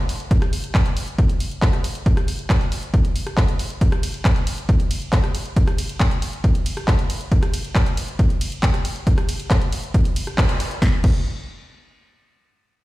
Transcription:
0.09 open hi-hat loud
0.20 closed hi-hat medium
0.31 kick loud
0.31 closed hi-hat medium
0.42 cross-stick medium
0.42 closed hi-hat medium
0.53 open hi-hat loud
0.64 closed hi-hat medium
0.75 kick loud
0.75 clap loud
0.75 closed hi-hat medium
0.86 closed hi-hat soft
0.97 open hi-hat loud
1.08 closed hi-hat medium
1.18 kick loud
1.18 closed hi-hat medium
1.29 closed hi-hat soft
1.40 open hi-hat loud
1.51 closed hi-hat medium
1.62 kick loud
1.62 clap loud
1.62 closed hi-hat medium
1.73 cross-stick medium
1.73 closed hi-hat medium
1.84 open hi-hat loud
1.95 closed hi-hat medium
2.06 kick loud
2.06 closed hi-hat medium
2.17 cross-stick medium
2.17 closed hi-hat soft
2.28 open hi-hat loud
2.39 closed hi-hat soft
2.50 kick loud
2.50 clap loud
2.50 closed hi-hat medium
2.61 closed hi-hat soft
2.72 open hi-hat loud
2.83 closed hi-hat medium
2.94 kick loud
2.94 closed hi-hat medium
3.05 closed hi-hat soft
3.16 open hi-hat loud
3.27 cross-stick medium
3.27 closed hi-hat medium
3.37 kick loud
3.37 clap loud
3.37 closed hi-hat medium
3.48 closed hi-hat medium
3.59 open hi-hat loud
3.70 closed hi-hat medium
3.81 kick loud
3.81 closed hi-hat medium
3.92 cross-stick medium
3.92 closed hi-hat soft
4.03 open hi-hat loud
4.03 ride medium
4.14 closed hi-hat medium
4.25 kick loud
4.25 clap loud
4.25 closed hi-hat medium
4.36 closed hi-hat medium
4.47 open hi-hat loud
4.47 ride medium
4.58 closed hi-hat soft
4.69 kick loud
4.69 closed hi-hat medium
4.80 closed hi-hat medium
4.91 open hi-hat loud
4.91 ride medium
5.02 closed hi-hat medium
5.13 kick loud
5.13 clap loud
5.13 closed hi-hat medium
5.24 cross-stick medium
5.24 closed hi-hat medium
5.35 open hi-hat loud
5.35 ride medium
5.46 closed hi-hat medium
5.56 kick loud
5.56 closed hi-hat medium
5.67 cross-stick medium
5.67 closed hi-hat medium
5.78 open hi-hat loud
5.78 ride medium
5.89 closed hi-hat medium
6.00 kick loud
6.00 clap loud
6.00 closed hi-hat medium
6.11 closed hi-hat soft
6.22 open hi-hat loud
6.22 ride medium
6.33 closed hi-hat medium
6.44 kick loud
6.44 closed hi-hat medium
6.55 closed hi-hat medium
6.66 open hi-hat loud
6.66 ride medium
6.77 cross-stick medium
6.77 closed hi-hat medium
6.88 kick loud
6.88 clap loud
6.88 closed hi-hat medium
6.99 closed hi-hat soft
7.10 open hi-hat loud
7.10 ride medium
7.21 closed hi-hat medium
7.32 kick loud
7.32 closed hi-hat medium
7.43 cross-stick medium
7.43 closed hi-hat medium
7.54 open hi-hat loud
7.54 ride medium
7.64 closed hi-hat medium
7.75 kick loud
7.75 clap loud
7.75 closed hi-hat medium
7.86 closed hi-hat medium
7.97 open hi-hat loud
7.97 ride medium
8.08 closed hi-hat medium
8.19 kick loud
8.19 closed hi-hat medium
8.30 closed hi-hat medium
8.41 open hi-hat loud
8.41 ride medium
8.52 closed hi-hat medium
8.63 kick loud
8.63 clap loud
8.63 closed hi-hat medium
8.74 cross-stick medium
8.74 closed hi-hat medium
8.85 open hi-hat loud
8.85 ride medium
8.96 closed hi-hat medium
9.07 kick loud
9.07 closed hi-hat medium
9.18 cross-stick medium
9.18 closed hi-hat medium
9.29 open hi-hat loud
9.29 ride medium
9.40 closed hi-hat medium
9.51 kick loud
9.51 clap loud
9.51 closed hi-hat medium
9.61 closed hi-hat medium
9.72 open hi-hat loud
9.72 ride medium
9.83 closed hi-hat medium
9.94 kick loud
9.94 closed hi-hat medium
10.05 closed hi-hat medium
10.16 open hi-hat loud
10.16 ride medium
10.27 cross-stick medium
10.27 closed hi-hat medium
10.38 kick loud
10.38 clap loud
10.38 closed hi-hat medium
10.49 closed hi-hat medium
10.60 open hi-hat loud
10.60 ride medium
10.71 closed hi-hat medium
10.82 kick loud
10.82 snare medium
11.04 kick loud
11.04 crash medium

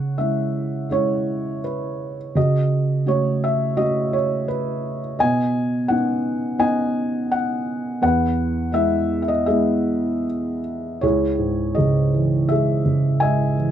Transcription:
0.00 2.33 C#3 medium
0.00 0.89 C#5 medium
0.00 0.15 F#5 medium
0.18 0.88 G#3 soft
0.18 0.89 C#4 soft
0.18 0.90 E4 soft
0.18 0.88 E5 medium
0.89 1.61 G#3 soft
0.89 1.62 C#4 soft
0.89 1.62 E4 soft
0.89 1.60 C#5 medium
1.64 2.15 B4 medium
2.35 5.16 C#3 medium
2.35 3.05 F#4 medium
2.35 3.04 D#5 medium
3.06 3.75 A3 soft
3.06 3.76 C#4 soft
3.06 3.75 F#4 soft
3.06 3.45 C#5 medium
3.44 3.80 E5 medium
3.77 4.47 A3 soft
3.77 4.47 C#4 soft
3.77 5.15 F#4 medium
3.77 4.15 D#5 loud
4.13 4.47 C#5 medium
4.48 4.98 B4 medium
5.19 7.99 B2 medium
5.19 6.57 D#5 medium
5.19 5.93 G#5 loud
5.88 6.57 B3 soft
5.88 6.58 C#4 soft
5.88 6.58 D#4 soft
5.88 6.62 F#5 medium
6.58 7.28 B3 medium
6.58 7.29 C#4 soft
6.58 7.29 D#4 soft
6.58 7.98 D#5 medium
6.58 7.33 G#5 medium
7.32 8.01 F#5 medium
8.02 10.98 E2 medium
8.02 9.45 B4 medium
8.02 8.71 F#5 medium
8.72 9.45 G#3 soft
8.72 9.45 B3 soft
8.72 9.46 E4 medium
8.72 9.21 E5 medium
9.22 9.29 E5 medium
9.28 9.47 D#5 medium
9.46 10.23 G#3 soft
9.46 10.24 B3 soft
9.46 10.24 E4 soft
9.46 10.98 G#4 medium
9.46 10.60 E5 medium
11.01 13.71 C#2 soft
11.01 12.46 E4 medium
11.01 11.75 G#4 medium
11.01 11.79 C#5 medium
11.38 12.81 G#2 soft
11.75 12.84 C#3 soft
11.75 12.50 G#4 soft
11.75 12.51 D#5 medium
12.14 13.53 E3 soft
12.49 13.20 G#3 soft
12.49 13.71 G#4 medium
12.49 13.21 E5 medium
12.85 13.71 C#3 soft
13.20 13.71 G#3 soft
13.20 13.71 D#5 medium
13.20 13.71 E5 medium
13.20 13.70 G#5 medium
13.57 13.71 E3 soft

